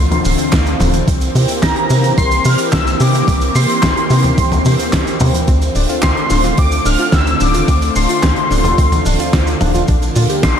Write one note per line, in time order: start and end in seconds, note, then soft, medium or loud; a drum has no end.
0.00 0.20 D2 loud
0.00 1.04 D3 medium
0.00 1.04 A3 medium
0.00 9.84 C4 medium
0.00 1.04 F4 medium
0.00 0.76 C6 loud
0.00 0.76 C7 medium
0.11 closed hi-hat soft
0.11 mid tom medium
0.11 shaker soft
0.25 0.36 D1 medium
0.25 open hi-hat medium
0.25 shaker medium
0.38 closed hi-hat medium
0.38 shaker soft
0.52 0.75 D2 medium
0.52 kick loud
0.52 snare loud
0.52 clap loud
0.52 closed hi-hat medium
0.52 shaker medium
0.66 closed hi-hat soft
0.66 shaker soft
0.80 1.03 D1 loud
0.80 open hi-hat medium
0.80 mid tom medium
0.80 shaker medium
0.94 closed hi-hat medium
0.94 shaker soft
1.08 1.30 C2 loud
1.08 5.44 E3 medium
1.08 5.44 A#3 medium
1.08 5.44 G4 medium
1.08 kick loud
1.08 closed hi-hat medium
1.08 shaker medium
1.21 closed hi-hat soft
1.21 shaker soft
1.35 1.47 C3 medium
1.35 open hi-hat medium
1.35 shaker medium
1.48 closed hi-hat medium
1.48 shaker medium
1.63 1.74 C2 loud
1.63 2.14 A#5 loud
1.63 2.14 A#6 medium
1.63 kick loud
1.63 snare loud
1.63 clap medium
1.63 closed hi-hat medium
1.63 shaker medium
1.76 closed hi-hat soft
1.90 2.13 C3 loud
1.90 open hi-hat medium
1.90 shaker medium
2.04 closed hi-hat medium
2.04 shaker soft
2.17 2.41 C2 loud
2.17 2.46 C6 loud
2.17 2.46 C7 loud
2.17 kick loud
2.17 closed hi-hat medium
2.17 shaker medium
2.31 closed hi-hat soft
2.31 shaker soft
2.45 2.57 C3 medium
2.45 2.58 F6 loud
2.45 open hi-hat medium
2.45 shaker medium
2.58 closed hi-hat medium
2.58 shaker medium
2.72 2.96 C2 medium
2.72 2.98 E6 loud
2.72 kick loud
2.72 snare loud
2.72 clap medium
2.72 closed hi-hat medium
2.72 shaker medium
2.87 closed hi-hat soft
2.87 shaker soft
3.00 3.23 C3 loud
3.00 3.57 D6 loud
3.00 open hi-hat medium
3.00 shaker medium
3.14 closed hi-hat medium
3.14 shaker soft
3.28 3.51 C2 loud
3.28 kick loud
3.28 closed hi-hat medium
3.28 shaker medium
3.41 closed hi-hat soft
3.41 shaker soft
3.55 3.67 C3 medium
3.55 5.17 C6 loud
3.55 5.17 C7 medium
3.55 open hi-hat medium
3.55 shaker medium
3.69 closed hi-hat medium
3.69 shaker medium
3.82 3.94 C2 loud
3.82 kick loud
3.82 snare loud
3.82 clap loud
3.82 closed hi-hat medium
3.82 shaker medium
3.97 closed hi-hat soft
4.10 4.33 C3 loud
4.10 open hi-hat medium
4.10 shaker medium
4.24 closed hi-hat medium
4.24 mid tom medium
4.24 shaker soft
4.38 4.61 C2 loud
4.38 kick loud
4.38 closed hi-hat medium
4.38 shaker medium
4.52 closed hi-hat soft
4.52 mid tom medium
4.52 shaker soft
4.65 4.77 C3 medium
4.65 open hi-hat medium
4.65 shaker medium
4.79 closed hi-hat medium
4.79 shaker medium
4.93 5.04 C2 medium
4.93 kick loud
4.93 snare loud
4.93 clap medium
4.93 closed hi-hat medium
4.93 shaker soft
5.07 closed hi-hat soft
5.07 shaker soft
5.20 5.32 C3 loud
5.20 open hi-hat medium
5.20 mid tom loud
5.20 shaker medium
5.34 closed hi-hat medium
5.34 shaker soft
5.47 5.71 D2 loud
5.47 10.60 D3 medium
5.47 9.84 A3 medium
5.47 5.56 C4 medium
5.47 10.60 F4 medium
5.47 kick loud
5.47 closed hi-hat medium
5.47 shaker medium
5.62 closed hi-hat soft
5.62 shaker soft
5.75 5.87 D1 medium
5.75 5.84 D4 medium
5.75 open hi-hat medium
5.75 shaker medium
5.89 6.01 F4 medium
5.89 closed hi-hat medium
5.89 shaker soft
6.02 6.14 D2 loud
6.02 6.11 C4 medium
6.02 6.54 C6 loud
6.02 6.54 C7 medium
6.02 kick loud
6.02 snare loud
6.02 clap loud
6.02 closed hi-hat medium
6.02 shaker medium
6.17 closed hi-hat soft
6.30 6.53 D1 loud
6.30 6.39 D4 medium
6.30 open hi-hat medium
6.30 shaker medium
6.44 6.56 F4 medium
6.44 closed hi-hat medium
6.44 shaker soft
6.57 6.81 D2 loud
6.57 6.66 C4 medium
6.57 6.87 D6 loud
6.57 kick loud
6.57 closed hi-hat medium
6.57 shaker medium
6.72 closed hi-hat soft
6.72 shaker soft
6.86 6.97 D1 medium
6.86 6.94 D4 medium
6.86 7.14 F6 loud
6.86 open hi-hat medium
6.86 shaker medium
6.98 7.12 F4 medium
6.98 closed hi-hat medium
6.98 shaker soft
7.12 7.36 D2 loud
7.12 7.21 C4 medium
7.12 7.42 E6 loud
7.12 kick loud
7.12 snare loud
7.12 clap medium
7.12 closed hi-hat medium
7.12 shaker medium
7.27 closed hi-hat soft
7.27 shaker soft
7.40 7.63 D1 loud
7.40 7.49 D4 medium
7.40 7.98 D6 loud
7.40 open hi-hat medium
7.40 shaker medium
7.54 7.67 F4 medium
7.54 closed hi-hat medium
7.54 shaker soft
7.68 7.91 D2 loud
7.68 7.76 C4 medium
7.68 kick loud
7.68 closed hi-hat medium
7.68 shaker medium
7.82 closed hi-hat soft
7.82 shaker soft
7.96 8.07 D1 medium
7.96 8.04 D4 medium
7.96 9.57 C6 loud
7.96 9.57 C7 medium
7.96 open hi-hat medium
7.96 shaker medium
8.09 8.22 F4 medium
8.09 closed hi-hat medium
8.09 shaker medium
8.23 8.35 D2 loud
8.23 8.31 C4 medium
8.23 kick loud
8.23 snare loud
8.23 clap medium
8.23 closed hi-hat medium
8.23 shaker medium
8.36 closed hi-hat soft
8.50 8.74 D1 loud
8.50 8.59 D4 medium
8.50 open hi-hat medium
8.50 shaker medium
8.64 8.77 F4 medium
8.64 closed hi-hat medium
8.64 mid tom medium
8.64 shaker soft
8.78 9.01 D2 loud
8.78 8.86 C4 medium
8.78 kick loud
8.78 closed hi-hat medium
8.78 shaker medium
8.92 closed hi-hat soft
8.92 mid tom medium
8.92 shaker soft
9.06 9.17 D1 medium
9.06 9.14 D4 medium
9.06 open hi-hat medium
9.06 shaker medium
9.19 9.32 F4 medium
9.19 closed hi-hat medium
9.19 shaker medium
9.33 9.56 D2 medium
9.33 9.41 C4 medium
9.33 kick loud
9.33 snare loud
9.33 clap medium
9.33 closed hi-hat medium
9.33 shaker medium
9.47 closed hi-hat soft
9.47 shaker soft
9.61 9.84 D1 loud
9.61 9.69 D4 medium
9.61 open hi-hat medium
9.61 mid tom medium
9.61 shaker medium
9.75 9.87 F4 medium
9.75 closed hi-hat medium
9.75 shaker medium
9.88 10.11 A#1 loud
9.88 10.60 G3 medium
9.88 10.60 A#3 medium
9.88 9.96 D4 medium
9.88 kick loud
9.88 closed hi-hat medium
9.88 shaker medium
10.02 closed hi-hat soft
10.02 shaker soft
10.15 10.27 A#2 medium
10.15 10.24 F4 medium
10.15 open hi-hat medium
10.15 shaker medium
10.30 10.42 G4 medium
10.30 closed hi-hat medium
10.30 shaker medium
10.43 10.55 A#1 loud
10.43 10.52 D4 medium
10.43 10.60 C6 loud
10.43 10.60 C7 loud
10.43 kick loud
10.43 snare loud
10.43 clap loud
10.43 closed hi-hat medium
10.43 shaker medium